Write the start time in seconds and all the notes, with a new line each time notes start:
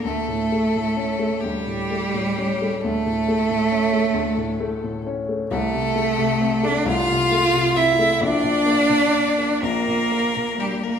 0.03 D2 A3 A4
0.28 A2
0.52 A3
0.76 A2
0.97 C#4
1.19 A3
1.41 D2 G3 G4
1.67 A2
1.91 A3
2.14 A2
2.38 C#4
2.62 A3
2.82 D2 A3 A4
3.07 A2
3.28 A3
3.50 A2
3.72 C#4
3.93 A3
4.14 D2
4.38 A2
4.60 A3
4.84 A2
5.07 C#4
5.29 A3
5.50 C2 A3 A4
5.74 C3
5.96 A3
6.18 C3
6.41 C4
6.63 A3 D4 D5
6.86 C2 F4 F5
7.10 C3
7.31 A3
7.53 C3
7.76 C4 E4 E5
7.99 A3
8.21 A#1 D4 D5
8.43 A#2
8.66 A#3
8.89 A#2
9.14 D4
9.38 A#3
9.63 A#1 A#3 A#4
9.88 A#2
10.12 A#3
10.36 A#2
10.59 G3 D4 G4
10.83 A#3 A#4